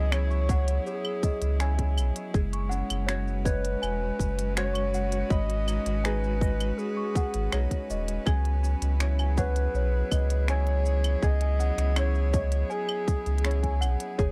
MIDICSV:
0, 0, Header, 1, 7, 480
1, 0, Start_track
1, 0, Key_signature, 4, "minor"
1, 0, Tempo, 740741
1, 1515, Time_signature, 4, 2, 24, 8
1, 9277, End_track
2, 0, Start_track
2, 0, Title_t, "Celesta"
2, 0, Program_c, 0, 8
2, 0, Control_c, 0, 64, 127
2, 0, Note_on_c, 0, 73, 84
2, 0, Note_on_c, 0, 75, 78
2, 0, Note_on_c, 0, 78, 103
2, 0, Note_on_c, 0, 80, 95
2, 0, Note_on_c, 0, 85, 70
2, 197, Note_off_c, 0, 85, 0
2, 197, Note_on_c, 0, 85, 71
2, 310, Note_off_c, 0, 85, 0
2, 326, Note_off_c, 0, 78, 0
2, 326, Note_on_c, 0, 78, 95
2, 435, Note_off_c, 0, 78, 0
2, 562, Note_off_c, 0, 73, 0
2, 562, Note_on_c, 0, 73, 81
2, 627, Note_off_c, 0, 73, 0
2, 802, Note_off_c, 0, 75, 0
2, 802, Note_on_c, 0, 75, 78
2, 913, Note_off_c, 0, 75, 0
2, 1038, Note_off_c, 0, 80, 0
2, 1038, Note_on_c, 0, 80, 109
2, 1151, Note_off_c, 0, 80, 0
2, 1523, Control_c, 0, 64, 0
2, 1631, Control_c, 0, 64, 127
2, 1639, Note_on_c, 0, 85, 73
2, 1746, Note_on_c, 0, 78, 98
2, 1751, Note_off_c, 0, 85, 0
2, 1864, Note_off_c, 0, 78, 0
2, 1987, Note_on_c, 0, 73, 86
2, 2059, Note_off_c, 0, 73, 0
2, 2234, Note_on_c, 0, 75, 71
2, 2349, Note_off_c, 0, 75, 0
2, 2475, Note_on_c, 0, 80, 95
2, 2589, Note_off_c, 0, 80, 0
2, 3068, Note_on_c, 0, 85, 75
2, 3186, Note_off_c, 0, 85, 0
2, 3204, Note_on_c, 0, 78, 103
2, 3314, Note_off_c, 0, 78, 0
2, 3438, Note_on_c, 0, 73, 79
2, 3443, Control_c, 0, 64, 0
2, 3505, Note_off_c, 0, 73, 0
2, 3556, Control_c, 0, 64, 127
2, 3676, Note_on_c, 0, 75, 72
2, 3790, Note_off_c, 0, 75, 0
2, 3913, Note_on_c, 0, 80, 92
2, 4028, Note_off_c, 0, 80, 0
2, 4516, Note_on_c, 0, 85, 74
2, 4630, Note_off_c, 0, 85, 0
2, 4644, Note_on_c, 0, 78, 101
2, 4754, Note_off_c, 0, 78, 0
2, 4876, Note_on_c, 0, 73, 80
2, 4944, Note_off_c, 0, 73, 0
2, 5123, Note_on_c, 0, 75, 75
2, 5233, Note_off_c, 0, 75, 0
2, 5359, Note_on_c, 0, 80, 97
2, 5363, Control_c, 0, 64, 0
2, 5469, Control_c, 0, 64, 127
2, 5471, Note_off_c, 0, 80, 0
2, 5959, Note_on_c, 0, 80, 72
2, 6071, Note_off_c, 0, 80, 0
2, 6080, Note_on_c, 0, 78, 97
2, 6192, Note_off_c, 0, 78, 0
2, 6322, Note_on_c, 0, 73, 82
2, 6387, Note_off_c, 0, 73, 0
2, 6558, Note_on_c, 0, 75, 75
2, 6671, Note_off_c, 0, 75, 0
2, 6803, Note_on_c, 0, 80, 108
2, 6913, Note_off_c, 0, 80, 0
2, 7401, Note_on_c, 0, 80, 74
2, 7512, Note_off_c, 0, 80, 0
2, 7515, Note_on_c, 0, 78, 97
2, 7629, Note_off_c, 0, 78, 0
2, 7752, Note_on_c, 0, 73, 82
2, 7822, Note_off_c, 0, 73, 0
2, 7993, Note_on_c, 0, 75, 72
2, 8108, Note_off_c, 0, 75, 0
2, 8229, Note_on_c, 0, 80, 105
2, 8346, Note_off_c, 0, 80, 0
2, 8833, Note_on_c, 0, 80, 73
2, 8948, Note_off_c, 0, 80, 0
2, 8948, Note_on_c, 0, 78, 103
2, 9066, Note_off_c, 0, 78, 0
2, 9189, Note_on_c, 0, 73, 73
2, 9203, Control_c, 0, 64, 0
2, 9261, Note_off_c, 0, 73, 0
2, 9277, End_track
3, 0, Start_track
3, 0, Title_t, "Clarinet"
3, 0, Program_c, 1, 71
3, 0, Note_on_c, 1, 75, 112
3, 78, Note_on_c, 1, 73, 115
3, 88, Note_off_c, 1, 75, 0
3, 554, Note_off_c, 1, 73, 0
3, 558, Note_on_c, 1, 68, 92
3, 1251, Note_off_c, 1, 68, 0
3, 2235, Note_on_c, 1, 71, 106
3, 2929, Note_off_c, 1, 71, 0
3, 2957, Note_on_c, 1, 73, 102
3, 3436, Note_on_c, 1, 75, 115
3, 3446, Note_off_c, 1, 73, 0
3, 3920, Note_on_c, 1, 71, 98
3, 3930, Note_off_c, 1, 75, 0
3, 4397, Note_on_c, 1, 68, 96
3, 4407, Note_off_c, 1, 71, 0
3, 5116, Note_off_c, 1, 68, 0
3, 6079, Note_on_c, 1, 71, 97
3, 6771, Note_off_c, 1, 71, 0
3, 6801, Note_on_c, 1, 73, 106
3, 7283, Note_on_c, 1, 75, 108
3, 7293, Note_off_c, 1, 73, 0
3, 7761, Note_on_c, 1, 73, 108
3, 7770, Note_off_c, 1, 75, 0
3, 8238, Note_on_c, 1, 68, 93
3, 8247, Note_off_c, 1, 73, 0
3, 8957, Note_off_c, 1, 68, 0
3, 9277, End_track
4, 0, Start_track
4, 0, Title_t, "Ukulele"
4, 0, Program_c, 2, 24
4, 0, Note_on_c, 2, 61, 63
4, 0, Note_on_c, 2, 64, 67
4, 0, Note_on_c, 2, 68, 90
4, 0, Note_on_c, 2, 73, 67
4, 72, Note_off_c, 2, 64, 0
4, 73, Note_off_c, 2, 61, 0
4, 76, Note_on_c, 2, 61, 65
4, 80, Note_on_c, 2, 64, 69
4, 81, Note_off_c, 2, 73, 0
4, 83, Note_on_c, 2, 73, 73
4, 316, Note_off_c, 2, 73, 0
4, 318, Note_on_c, 2, 73, 72
4, 1029, Note_off_c, 2, 64, 0
4, 1030, Note_off_c, 2, 61, 0
4, 1033, Note_on_c, 2, 61, 62
4, 1037, Note_off_c, 2, 73, 0
4, 1037, Note_on_c, 2, 64, 65
4, 1040, Note_on_c, 2, 73, 69
4, 1514, Note_off_c, 2, 64, 0
4, 1516, Note_off_c, 2, 68, 0
4, 1516, Note_on_c, 2, 68, 90
4, 1752, Note_off_c, 2, 61, 0
4, 1754, Note_on_c, 2, 61, 62
4, 1987, Note_off_c, 2, 61, 0
4, 1994, Note_off_c, 2, 68, 0
4, 1994, Note_on_c, 2, 61, 71
4, 1997, Note_on_c, 2, 66, 62
4, 2002, Note_off_c, 2, 73, 0
4, 2002, Note_on_c, 2, 73, 72
4, 2228, Note_off_c, 2, 73, 0
4, 2236, Note_on_c, 2, 73, 75
4, 2949, Note_off_c, 2, 61, 0
4, 2954, Note_off_c, 2, 66, 0
4, 2956, Note_off_c, 2, 73, 0
4, 2957, Note_on_c, 2, 61, 61
4, 2961, Note_on_c, 2, 66, 65
4, 2965, Note_on_c, 2, 73, 75
4, 3434, Note_off_c, 2, 73, 0
4, 3436, Note_on_c, 2, 71, 90
4, 3484, Note_off_c, 2, 61, 0
4, 3486, Note_off_c, 2, 66, 0
4, 3679, Note_on_c, 2, 63, 60
4, 3910, Note_off_c, 2, 63, 0
4, 3918, Note_on_c, 2, 63, 69
4, 3923, Note_on_c, 2, 68, 63
4, 3926, Note_on_c, 2, 75, 75
4, 4150, Note_off_c, 2, 75, 0
4, 4158, Note_on_c, 2, 75, 75
4, 4868, Note_off_c, 2, 63, 0
4, 4875, Note_on_c, 2, 63, 59
4, 4876, Note_off_c, 2, 75, 0
4, 4877, Note_off_c, 2, 68, 0
4, 4880, Note_on_c, 2, 68, 59
4, 4883, Note_on_c, 2, 75, 62
4, 5348, Note_off_c, 2, 71, 0
4, 5350, Note_off_c, 2, 68, 0
4, 5350, Note_on_c, 2, 68, 88
4, 5403, Note_off_c, 2, 63, 0
4, 5407, Note_off_c, 2, 75, 0
4, 5592, Note_on_c, 2, 61, 61
4, 5830, Note_off_c, 2, 61, 0
4, 5832, Note_on_c, 2, 61, 67
4, 5836, Note_on_c, 2, 64, 62
4, 5840, Note_on_c, 2, 73, 70
4, 6071, Note_off_c, 2, 73, 0
4, 6074, Note_on_c, 2, 73, 78
4, 6787, Note_off_c, 2, 64, 0
4, 6788, Note_off_c, 2, 61, 0
4, 6791, Note_on_c, 2, 61, 61
4, 6795, Note_on_c, 2, 64, 60
4, 6796, Note_off_c, 2, 73, 0
4, 6798, Note_on_c, 2, 73, 72
4, 7270, Note_off_c, 2, 68, 0
4, 7273, Note_on_c, 2, 68, 92
4, 7509, Note_off_c, 2, 61, 0
4, 7511, Note_on_c, 2, 61, 65
4, 7745, Note_off_c, 2, 64, 0
4, 7747, Note_off_c, 2, 61, 0
4, 7750, Note_on_c, 2, 61, 67
4, 7753, Note_on_c, 2, 64, 66
4, 7754, Note_off_c, 2, 73, 0
4, 7757, Note_on_c, 2, 73, 70
4, 7987, Note_off_c, 2, 73, 0
4, 7990, Note_on_c, 2, 73, 75
4, 8707, Note_off_c, 2, 61, 0
4, 8708, Note_off_c, 2, 64, 0
4, 8709, Note_on_c, 2, 61, 70
4, 8715, Note_on_c, 2, 64, 65
4, 8716, Note_off_c, 2, 73, 0
4, 8718, Note_on_c, 2, 73, 70
4, 9190, Note_off_c, 2, 64, 0
4, 9192, Note_off_c, 2, 68, 0
4, 9192, Note_on_c, 2, 68, 96
4, 9277, Note_off_c, 2, 61, 0
4, 9277, Note_off_c, 2, 68, 0
4, 9277, Note_off_c, 2, 73, 0
4, 9277, End_track
5, 0, Start_track
5, 0, Title_t, "String quartet"
5, 0, Program_c, 3, 48
5, 0, Note_on_c, 3, 54, 85
5, 0, Note_on_c, 3, 59, 62
5, 0, Note_on_c, 3, 64, 76
5, 0, Note_on_c, 3, 68, 81
5, 1518, Note_off_c, 3, 54, 0
5, 1527, Note_on_c, 3, 56, 93
5, 1689, Note_on_c, 3, 61, 73
5, 1987, Note_on_c, 3, 66, 78
5, 2142, Note_on_c, 3, 71, 70
5, 2284, Note_off_c, 3, 68, 0
5, 2285, Note_off_c, 3, 64, 0
5, 2287, Note_off_c, 3, 59, 0
5, 5357, Note_on_c, 3, 54, 71
5, 5361, Note_off_c, 3, 56, 0
5, 5438, Note_on_c, 3, 59, 66
5, 5744, Note_on_c, 3, 64, 64
5, 5992, Note_on_c, 3, 68, 91
5, 6850, Note_off_c, 3, 66, 0
5, 6896, Note_off_c, 3, 61, 0
5, 6896, Note_off_c, 3, 71, 0
5, 9196, Note_off_c, 3, 54, 0
5, 9197, Note_on_c, 3, 56, 92
5, 9277, Note_off_c, 3, 56, 0
5, 9277, Note_off_c, 3, 59, 0
5, 9277, Note_off_c, 3, 64, 0
5, 9277, Note_off_c, 3, 68, 0
5, 9277, End_track
6, 0, Start_track
6, 0, Title_t, "Sub bass"
6, 0, Program_c, 4, 38
6, 0, Note_on_c, 4, 37, 96
6, 514, Note_off_c, 4, 37, 0
6, 918, Note_on_c, 4, 37, 97
6, 1280, Note_on_c, 4, 35, 102
6, 1290, Note_off_c, 4, 37, 0
6, 1371, Note_off_c, 4, 35, 0
6, 1516, Note_on_c, 4, 30, 99
6, 1833, Note_off_c, 4, 30, 0
6, 1881, Note_on_c, 4, 30, 91
6, 2435, Note_off_c, 4, 30, 0
6, 2481, Note_on_c, 4, 28, 98
6, 2664, Note_off_c, 4, 28, 0
6, 2716, Note_on_c, 4, 30, 91
6, 3393, Note_off_c, 4, 30, 0
6, 3436, Note_on_c, 4, 32, 99
6, 3753, Note_off_c, 4, 32, 0
6, 3798, Note_on_c, 4, 32, 84
6, 4353, Note_off_c, 4, 32, 0
6, 4759, Note_on_c, 4, 32, 95
6, 4850, Note_off_c, 4, 32, 0
6, 4880, Note_on_c, 4, 35, 100
6, 4971, Note_off_c, 4, 35, 0
6, 5120, Note_on_c, 4, 27, 102
6, 5304, Note_off_c, 4, 27, 0
6, 5356, Note_on_c, 4, 37, 100
6, 5672, Note_off_c, 4, 37, 0
6, 5715, Note_on_c, 4, 37, 94
6, 6272, Note_off_c, 4, 37, 0
6, 6312, Note_on_c, 4, 35, 96
6, 6500, Note_off_c, 4, 35, 0
6, 6557, Note_on_c, 4, 37, 91
6, 7233, Note_off_c, 4, 37, 0
6, 7273, Note_on_c, 4, 37, 99
6, 7591, Note_off_c, 4, 37, 0
6, 7631, Note_on_c, 4, 37, 98
6, 8190, Note_off_c, 4, 37, 0
6, 8595, Note_on_c, 4, 37, 91
6, 8955, Note_on_c, 4, 35, 103
6, 8964, Note_off_c, 4, 37, 0
6, 9048, Note_off_c, 4, 35, 0
6, 9195, Note_on_c, 4, 30, 97
6, 9277, Note_off_c, 4, 30, 0
6, 9277, End_track
7, 0, Start_track
7, 0, Title_t, "Drums"
7, 79, Note_on_c, 9, 26, 115
7, 79, Note_on_c, 9, 75, 79
7, 81, Note_on_c, 9, 82, 45
7, 144, Note_off_c, 9, 26, 0
7, 144, Note_off_c, 9, 75, 0
7, 146, Note_off_c, 9, 82, 0
7, 200, Note_on_c, 9, 82, 31
7, 264, Note_off_c, 9, 82, 0
7, 317, Note_on_c, 9, 36, 109
7, 319, Note_on_c, 9, 82, 81
7, 382, Note_off_c, 9, 36, 0
7, 384, Note_off_c, 9, 82, 0
7, 440, Note_on_c, 9, 42, 53
7, 442, Note_on_c, 9, 82, 33
7, 505, Note_off_c, 9, 42, 0
7, 506, Note_off_c, 9, 82, 0
7, 561, Note_on_c, 9, 82, 43
7, 626, Note_off_c, 9, 82, 0
7, 678, Note_on_c, 9, 75, 70
7, 743, Note_off_c, 9, 75, 0
7, 797, Note_on_c, 9, 36, 101
7, 798, Note_on_c, 9, 82, 80
7, 862, Note_off_c, 9, 36, 0
7, 863, Note_off_c, 9, 82, 0
7, 918, Note_on_c, 9, 42, 56
7, 919, Note_on_c, 9, 82, 35
7, 983, Note_off_c, 9, 42, 0
7, 984, Note_off_c, 9, 82, 0
7, 1037, Note_on_c, 9, 26, 97
7, 1039, Note_on_c, 9, 82, 48
7, 1102, Note_off_c, 9, 26, 0
7, 1104, Note_off_c, 9, 82, 0
7, 1157, Note_on_c, 9, 36, 64
7, 1158, Note_on_c, 9, 42, 42
7, 1222, Note_off_c, 9, 36, 0
7, 1223, Note_off_c, 9, 42, 0
7, 1280, Note_on_c, 9, 75, 77
7, 1282, Note_on_c, 9, 82, 83
7, 1345, Note_off_c, 9, 75, 0
7, 1346, Note_off_c, 9, 82, 0
7, 1399, Note_on_c, 9, 42, 57
7, 1401, Note_on_c, 9, 82, 33
7, 1464, Note_off_c, 9, 42, 0
7, 1465, Note_off_c, 9, 82, 0
7, 1518, Note_on_c, 9, 36, 119
7, 1520, Note_on_c, 9, 82, 45
7, 1583, Note_off_c, 9, 36, 0
7, 1585, Note_off_c, 9, 82, 0
7, 1641, Note_on_c, 9, 42, 41
7, 1706, Note_off_c, 9, 42, 0
7, 1760, Note_on_c, 9, 82, 78
7, 1825, Note_off_c, 9, 82, 0
7, 1881, Note_on_c, 9, 42, 51
7, 1881, Note_on_c, 9, 75, 75
7, 1882, Note_on_c, 9, 82, 35
7, 1945, Note_off_c, 9, 42, 0
7, 1945, Note_off_c, 9, 75, 0
7, 1947, Note_off_c, 9, 82, 0
7, 1999, Note_on_c, 9, 26, 109
7, 2001, Note_on_c, 9, 82, 49
7, 2064, Note_off_c, 9, 26, 0
7, 2066, Note_off_c, 9, 82, 0
7, 2123, Note_on_c, 9, 82, 27
7, 2188, Note_off_c, 9, 82, 0
7, 2238, Note_on_c, 9, 36, 108
7, 2242, Note_on_c, 9, 82, 85
7, 2303, Note_off_c, 9, 36, 0
7, 2307, Note_off_c, 9, 82, 0
7, 2363, Note_on_c, 9, 42, 51
7, 2365, Note_on_c, 9, 82, 32
7, 2428, Note_off_c, 9, 42, 0
7, 2429, Note_off_c, 9, 82, 0
7, 2481, Note_on_c, 9, 75, 76
7, 2482, Note_on_c, 9, 82, 43
7, 2546, Note_off_c, 9, 75, 0
7, 2547, Note_off_c, 9, 82, 0
7, 2718, Note_on_c, 9, 36, 65
7, 2723, Note_on_c, 9, 82, 78
7, 2783, Note_off_c, 9, 36, 0
7, 2788, Note_off_c, 9, 82, 0
7, 2843, Note_on_c, 9, 42, 60
7, 2844, Note_on_c, 9, 82, 37
7, 2907, Note_off_c, 9, 42, 0
7, 2909, Note_off_c, 9, 82, 0
7, 2961, Note_on_c, 9, 26, 102
7, 2962, Note_on_c, 9, 82, 44
7, 3026, Note_off_c, 9, 26, 0
7, 3027, Note_off_c, 9, 82, 0
7, 3080, Note_on_c, 9, 42, 42
7, 3080, Note_on_c, 9, 75, 77
7, 3145, Note_off_c, 9, 42, 0
7, 3145, Note_off_c, 9, 75, 0
7, 3202, Note_on_c, 9, 82, 85
7, 3266, Note_off_c, 9, 82, 0
7, 3319, Note_on_c, 9, 42, 52
7, 3320, Note_on_c, 9, 82, 34
7, 3383, Note_off_c, 9, 42, 0
7, 3385, Note_off_c, 9, 82, 0
7, 3437, Note_on_c, 9, 36, 118
7, 3441, Note_on_c, 9, 82, 44
7, 3501, Note_off_c, 9, 36, 0
7, 3506, Note_off_c, 9, 82, 0
7, 3562, Note_on_c, 9, 42, 38
7, 3627, Note_off_c, 9, 42, 0
7, 3679, Note_on_c, 9, 75, 72
7, 3681, Note_on_c, 9, 82, 76
7, 3744, Note_off_c, 9, 75, 0
7, 3745, Note_off_c, 9, 82, 0
7, 3798, Note_on_c, 9, 26, 30
7, 3798, Note_on_c, 9, 42, 54
7, 3800, Note_on_c, 9, 82, 37
7, 3863, Note_off_c, 9, 26, 0
7, 3863, Note_off_c, 9, 42, 0
7, 3865, Note_off_c, 9, 82, 0
7, 3920, Note_on_c, 9, 26, 100
7, 3921, Note_on_c, 9, 82, 45
7, 3985, Note_off_c, 9, 26, 0
7, 3986, Note_off_c, 9, 82, 0
7, 4042, Note_on_c, 9, 82, 30
7, 4107, Note_off_c, 9, 82, 0
7, 4156, Note_on_c, 9, 36, 110
7, 4162, Note_on_c, 9, 82, 82
7, 4220, Note_off_c, 9, 36, 0
7, 4227, Note_off_c, 9, 82, 0
7, 4280, Note_on_c, 9, 42, 46
7, 4280, Note_on_c, 9, 75, 73
7, 4281, Note_on_c, 9, 82, 30
7, 4345, Note_off_c, 9, 42, 0
7, 4345, Note_off_c, 9, 75, 0
7, 4346, Note_off_c, 9, 82, 0
7, 4398, Note_on_c, 9, 82, 44
7, 4463, Note_off_c, 9, 82, 0
7, 4636, Note_on_c, 9, 36, 98
7, 4640, Note_on_c, 9, 82, 78
7, 4701, Note_off_c, 9, 36, 0
7, 4705, Note_off_c, 9, 82, 0
7, 4755, Note_on_c, 9, 42, 51
7, 4757, Note_on_c, 9, 82, 36
7, 4820, Note_off_c, 9, 42, 0
7, 4822, Note_off_c, 9, 82, 0
7, 4876, Note_on_c, 9, 26, 96
7, 4876, Note_on_c, 9, 75, 75
7, 4877, Note_on_c, 9, 82, 47
7, 4941, Note_off_c, 9, 26, 0
7, 4941, Note_off_c, 9, 75, 0
7, 4942, Note_off_c, 9, 82, 0
7, 4996, Note_on_c, 9, 36, 55
7, 4998, Note_on_c, 9, 42, 41
7, 4999, Note_on_c, 9, 82, 30
7, 5061, Note_off_c, 9, 36, 0
7, 5062, Note_off_c, 9, 42, 0
7, 5064, Note_off_c, 9, 82, 0
7, 5119, Note_on_c, 9, 82, 80
7, 5184, Note_off_c, 9, 82, 0
7, 5238, Note_on_c, 9, 42, 52
7, 5239, Note_on_c, 9, 82, 31
7, 5302, Note_off_c, 9, 42, 0
7, 5304, Note_off_c, 9, 82, 0
7, 5355, Note_on_c, 9, 36, 119
7, 5356, Note_on_c, 9, 75, 83
7, 5358, Note_on_c, 9, 82, 42
7, 5420, Note_off_c, 9, 36, 0
7, 5421, Note_off_c, 9, 75, 0
7, 5423, Note_off_c, 9, 82, 0
7, 5477, Note_on_c, 9, 42, 39
7, 5542, Note_off_c, 9, 42, 0
7, 5598, Note_on_c, 9, 82, 73
7, 5663, Note_off_c, 9, 82, 0
7, 5716, Note_on_c, 9, 42, 55
7, 5717, Note_on_c, 9, 82, 32
7, 5781, Note_off_c, 9, 42, 0
7, 5782, Note_off_c, 9, 82, 0
7, 5834, Note_on_c, 9, 26, 101
7, 5836, Note_on_c, 9, 82, 47
7, 5899, Note_off_c, 9, 26, 0
7, 5901, Note_off_c, 9, 82, 0
7, 5956, Note_on_c, 9, 75, 76
7, 5957, Note_on_c, 9, 82, 28
7, 6020, Note_off_c, 9, 75, 0
7, 6022, Note_off_c, 9, 82, 0
7, 6074, Note_on_c, 9, 82, 80
7, 6075, Note_on_c, 9, 36, 102
7, 6139, Note_off_c, 9, 82, 0
7, 6140, Note_off_c, 9, 36, 0
7, 6195, Note_on_c, 9, 42, 49
7, 6197, Note_on_c, 9, 82, 34
7, 6260, Note_off_c, 9, 42, 0
7, 6261, Note_off_c, 9, 82, 0
7, 6317, Note_on_c, 9, 82, 42
7, 6382, Note_off_c, 9, 82, 0
7, 6554, Note_on_c, 9, 75, 76
7, 6555, Note_on_c, 9, 36, 61
7, 6556, Note_on_c, 9, 82, 78
7, 6619, Note_off_c, 9, 75, 0
7, 6620, Note_off_c, 9, 36, 0
7, 6621, Note_off_c, 9, 82, 0
7, 6676, Note_on_c, 9, 42, 54
7, 6678, Note_on_c, 9, 82, 36
7, 6741, Note_off_c, 9, 42, 0
7, 6743, Note_off_c, 9, 82, 0
7, 6793, Note_on_c, 9, 26, 91
7, 6795, Note_on_c, 9, 82, 45
7, 6858, Note_off_c, 9, 26, 0
7, 6859, Note_off_c, 9, 82, 0
7, 6913, Note_on_c, 9, 42, 43
7, 6978, Note_off_c, 9, 42, 0
7, 7035, Note_on_c, 9, 82, 74
7, 7099, Note_off_c, 9, 82, 0
7, 7156, Note_on_c, 9, 42, 51
7, 7156, Note_on_c, 9, 75, 72
7, 7157, Note_on_c, 9, 82, 30
7, 7221, Note_off_c, 9, 42, 0
7, 7221, Note_off_c, 9, 75, 0
7, 7222, Note_off_c, 9, 82, 0
7, 7274, Note_on_c, 9, 36, 104
7, 7276, Note_on_c, 9, 82, 41
7, 7339, Note_off_c, 9, 36, 0
7, 7341, Note_off_c, 9, 82, 0
7, 7392, Note_on_c, 9, 42, 42
7, 7457, Note_off_c, 9, 42, 0
7, 7517, Note_on_c, 9, 82, 70
7, 7582, Note_off_c, 9, 82, 0
7, 7635, Note_on_c, 9, 26, 31
7, 7635, Note_on_c, 9, 42, 53
7, 7637, Note_on_c, 9, 82, 30
7, 7700, Note_off_c, 9, 26, 0
7, 7700, Note_off_c, 9, 42, 0
7, 7702, Note_off_c, 9, 82, 0
7, 7752, Note_on_c, 9, 26, 97
7, 7752, Note_on_c, 9, 75, 87
7, 7754, Note_on_c, 9, 82, 45
7, 7817, Note_off_c, 9, 26, 0
7, 7817, Note_off_c, 9, 75, 0
7, 7819, Note_off_c, 9, 82, 0
7, 7873, Note_on_c, 9, 82, 26
7, 7938, Note_off_c, 9, 82, 0
7, 7993, Note_on_c, 9, 82, 75
7, 7994, Note_on_c, 9, 36, 111
7, 8058, Note_off_c, 9, 36, 0
7, 8058, Note_off_c, 9, 82, 0
7, 8112, Note_on_c, 9, 42, 53
7, 8114, Note_on_c, 9, 82, 30
7, 8177, Note_off_c, 9, 42, 0
7, 8179, Note_off_c, 9, 82, 0
7, 8233, Note_on_c, 9, 82, 41
7, 8298, Note_off_c, 9, 82, 0
7, 8351, Note_on_c, 9, 75, 86
7, 8415, Note_off_c, 9, 75, 0
7, 8474, Note_on_c, 9, 36, 97
7, 8475, Note_on_c, 9, 82, 70
7, 8538, Note_off_c, 9, 36, 0
7, 8539, Note_off_c, 9, 82, 0
7, 8594, Note_on_c, 9, 42, 28
7, 8596, Note_on_c, 9, 82, 33
7, 8659, Note_off_c, 9, 42, 0
7, 8661, Note_off_c, 9, 82, 0
7, 8673, Note_on_c, 9, 42, 35
7, 8712, Note_on_c, 9, 26, 98
7, 8714, Note_on_c, 9, 82, 42
7, 8737, Note_off_c, 9, 42, 0
7, 8755, Note_on_c, 9, 42, 45
7, 8777, Note_off_c, 9, 26, 0
7, 8779, Note_off_c, 9, 82, 0
7, 8819, Note_off_c, 9, 42, 0
7, 8834, Note_on_c, 9, 36, 54
7, 8836, Note_on_c, 9, 42, 40
7, 8899, Note_off_c, 9, 36, 0
7, 8901, Note_off_c, 9, 42, 0
7, 8954, Note_on_c, 9, 75, 82
7, 8956, Note_on_c, 9, 82, 76
7, 9019, Note_off_c, 9, 75, 0
7, 9020, Note_off_c, 9, 82, 0
7, 9073, Note_on_c, 9, 42, 59
7, 9074, Note_on_c, 9, 82, 31
7, 9138, Note_off_c, 9, 42, 0
7, 9139, Note_off_c, 9, 82, 0
7, 9194, Note_on_c, 9, 36, 114
7, 9197, Note_on_c, 9, 82, 41
7, 9258, Note_off_c, 9, 36, 0
7, 9262, Note_off_c, 9, 82, 0
7, 9277, End_track
0, 0, End_of_file